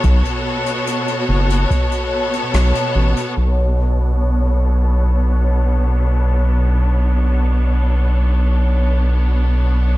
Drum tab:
HH |xx-xxx-xxx-xxx-x|----------------|----------------|
SD |------------r---|----------------|----------------|
BD |o-------o-------|----------------|----------------|